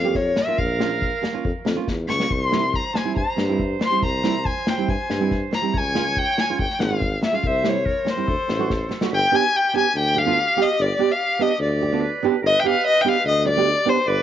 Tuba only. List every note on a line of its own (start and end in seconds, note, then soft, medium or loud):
0.00 0.32 F2 loud
0.58 1.10 A#1 medium
1.44 1.51 F2 medium
1.66 1.79 F2 medium
1.88 2.07 E2 medium
2.10 2.29 C#2 medium
2.31 2.82 C2 medium
3.16 3.23 G2 medium
3.38 3.76 G2 loud
4.02 4.54 C2 medium
4.89 4.95 G2 medium
5.10 5.48 G2 loud
5.75 6.25 C#2 medium
6.59 6.65 G#1 medium
6.80 7.18 G#1 loud
7.43 7.94 C2 medium
8.28 8.34 D2 medium
8.49 8.87 A1 loud
9.11 9.24 G1 loud
9.95 10.45 D2 medium
10.78 10.91 G1 loud
11.60 12.10 D2 loud
12.42 12.55 G1 medium
13.24 13.74 D2 loud
14.06 14.19 G1 loud